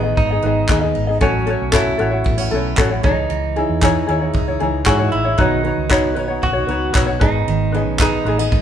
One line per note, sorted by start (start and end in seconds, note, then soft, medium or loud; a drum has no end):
0.00 0.13 A1 medium
0.00 0.41 D#3 medium
0.00 0.21 B3 medium
0.00 0.68 B3 medium
0.00 0.29 D#5 medium
0.05 0.32 D#4 soft
0.05 0.31 G#4 medium
0.17 0.39 G#1 medium
0.17 1.17 D#4 medium
0.17 0.94 D#4 medium
0.17 kick medium
0.31 0.43 D#4 soft
0.31 0.44 G#4 soft
0.31 0.43 D#5 soft
0.42 0.65 G#1 medium
0.42 1.20 D#3 medium
0.42 0.68 D#4 medium
0.42 0.70 G#4 medium
0.42 0.68 B4 medium
0.47 0.70 D#5 medium
0.69 0.91 D#2 medium
0.69 1.26 B3 medium
0.69 0.82 D#4 medium
0.69 0.82 G#4 medium
0.69 0.82 B4 medium
0.69 0.80 D#5 medium
0.69 kick loud
0.69 clap medium
0.81 1.09 D#4 soft
0.81 1.08 G#4 soft
0.81 1.06 D#5 medium
0.95 1.17 G#1 medium
0.95 1.26 D#4 medium
1.07 1.21 D#4 soft
1.07 1.22 G#4 medium
1.07 1.20 D#5 medium
1.20 1.54 A1 medium
1.20 1.72 F#3 medium
1.20 1.46 C#4 medium
1.20 1.75 C#4 medium
1.20 1.47 F#4 medium
1.20 1.45 A4 medium
1.20 1.48 C#5 medium
1.20 kick medium
1.46 1.98 A3 medium
1.46 1.71 C#4 medium
1.46 1.72 F#4 medium
1.46 1.70 A4 medium
1.46 1.73 C#5 medium
1.62 1.93 B1 medium
1.72 2.50 F#3 medium
1.72 1.98 C#4 medium
1.72 3.01 E4 medium
1.72 1.98 F#4 medium
1.72 1.96 A4 medium
1.72 2.00 C#5 medium
1.72 kick loud
1.72 clap loud
1.97 2.21 A1 medium
1.97 2.75 A3 medium
1.97 2.12 C#4 medium
1.97 2.12 F#4 medium
1.97 2.10 A4 medium
1.97 2.10 C#5 medium
2.11 2.39 F#4 soft
2.11 2.36 C#5 medium
2.15 2.40 C#4 soft
2.24 2.47 A1 medium
2.24 2.38 B3 medium
2.24 kick medium
2.37 3.09 C#4 medium
2.37 2.52 C#4 soft
2.37 2.52 F#4 soft
2.37 2.51 C#5 soft
2.51 2.73 B1 medium
2.51 3.03 F#3 medium
2.51 2.78 C#4 medium
2.51 2.78 F#4 medium
2.51 2.76 A4 medium
2.51 2.79 C#5 medium
2.77 2.99 A1 medium
2.77 3.09 A3 medium
2.77 2.91 C#4 medium
2.77 2.91 F#4 medium
2.77 2.91 A4 medium
2.77 2.89 C#5 medium
2.77 kick loud
2.77 clap loud
2.91 3.04 C#4 soft
2.91 3.03 F#4 soft
2.91 3.04 C#5 medium
3.03 3.26 C#2 loud
3.03 3.29 E3 medium
3.03 4.92 D#4 medium
3.03 3.57 D#4 medium
3.03 3.55 G#4 medium
3.03 3.59 C#5 medium
3.03 kick loud
3.30 3.62 C#2 medium
3.30 3.81 E3 medium
3.56 4.07 G#3 medium
3.56 3.82 D#4 medium
3.56 3.82 E4 medium
3.56 3.80 G#4 medium
3.56 3.83 C#5 medium
3.69 4.01 E2 medium
3.82 4.59 E3 medium
3.82 4.07 D#4 medium
3.82 4.08 E4 medium
3.82 4.06 G#4 medium
3.82 4.09 C#5 medium
3.82 kick loud
3.82 clap loud
4.07 4.30 D#2 medium
4.07 4.85 G#3 medium
4.07 4.22 D#4 medium
4.07 4.22 E4 medium
4.07 4.21 G#4 medium
4.07 4.20 C#5 medium
4.21 4.49 D#4 soft
4.21 4.48 E4 soft
4.21 4.47 C#5 soft
4.34 4.56 C#2 medium
4.34 5.12 D#4 medium
4.34 kick medium
4.48 4.60 D#4 soft
4.48 4.61 E4 soft
4.48 4.61 C#5 medium
4.60 4.83 C#2 medium
4.60 5.37 E3 soft
4.60 4.86 D#4 medium
4.60 4.87 E4 medium
4.60 4.85 G#4 medium
4.60 4.88 C#5 medium
4.86 5.08 G#2 medium
4.86 5.44 G#3 soft
4.86 5.00 D#4 medium
4.86 4.99 E4 medium
4.86 5.12 F#4 loud
4.86 4.99 G#4 medium
4.86 4.98 C#5 medium
4.86 kick loud
4.86 clap loud
4.99 5.27 D#4 soft
4.99 5.26 E4 soft
4.99 5.23 C#5 medium
5.12 5.34 A1 medium
5.12 5.64 D#4 medium
5.12 5.39 E4 medium
5.25 5.37 D#4 soft
5.25 5.39 E4 soft
5.25 5.38 C#5 medium
5.38 5.71 B1 loud
5.38 7.21 D#3 medium
5.38 6.46 D#4 medium
5.38 5.63 D#4 medium
5.38 5.64 F#4 medium
5.38 5.63 B4 medium
5.38 5.63 C#5 medium
5.38 kick medium
5.64 6.15 C#4 soft
5.64 5.90 D#4 medium
5.64 5.90 F#4 medium
5.64 5.88 B4 medium
5.64 5.89 C#5 medium
5.78 6.17 C#2 medium
5.89 6.68 B3 medium
5.89 6.16 D#4 medium
5.89 6.17 F#4 medium
5.89 6.14 B4 medium
5.89 6.17 C#5 loud
5.89 kick medium
5.89 clap loud
6.15 6.38 B1 medium
6.15 6.94 C#4 medium
6.15 6.30 D#4 medium
6.15 6.29 F#4 medium
6.15 6.29 B4 medium
6.15 6.27 C#5 medium
6.28 6.56 D#4 soft
6.28 6.54 F#4 soft
6.28 6.52 C#5 medium
6.43 6.65 B1 medium
6.43 7.27 F#4 medium
6.43 7.24 F#4 medium
6.43 kick medium
6.53 6.67 D#4 soft
6.53 6.69 F#4 soft
6.53 6.66 C#5 medium
6.67 6.90 C#2 medium
6.67 7.74 B3 medium
6.67 6.93 D#4 medium
6.67 6.93 F#4 medium
6.67 6.92 B4 medium
6.67 6.92 C#5 medium
6.93 7.17 B1 medium
6.93 7.27 C#4 medium
6.93 7.08 D#4 medium
6.93 7.07 F#4 medium
6.93 7.07 B4 medium
6.93 7.05 C#5 medium
6.93 kick loud
6.93 clap loud
7.06 7.19 D#4 soft
7.06 7.21 F#4 soft
7.06 7.21 C#5 soft
7.20 7.43 G#1 loud
7.20 7.47 D#3 medium
7.20 7.72 D#4 medium
7.20 7.80 D#4 medium
7.20 7.73 G#4 medium
7.20 7.71 B4 medium
7.20 7.74 D#5 medium
7.20 kick loud
7.47 7.86 G#1 medium
7.47 8.00 D#3 medium
7.72 8.26 B3 medium
7.72 8.00 D#4 medium
7.72 8.00 G#4 medium
7.72 7.99 B4 medium
7.72 8.01 D#5 medium
7.80 8.00 C#4 medium
7.86 8.19 B1 medium
7.99 8.62 D#3 medium
7.99 8.26 D#4 medium
7.99 8.62 D#4 medium
7.99 8.27 G#4 medium
7.99 8.25 B4 medium
7.99 8.27 D#5 loud
7.99 kick loud
7.99 clap loud
8.25 8.47 A1 medium
8.25 8.39 A3 medium
8.25 8.40 D#4 medium
8.25 8.39 G#4 medium
8.25 8.39 B4 medium
8.30 8.38 D#5 medium
8.39 8.62 B3 soft
8.39 8.62 D#4 soft
8.39 8.62 G#4 soft
8.39 8.62 D#5 soft
8.52 8.62 G#1 medium
8.52 8.62 D#4 medium
8.52 kick medium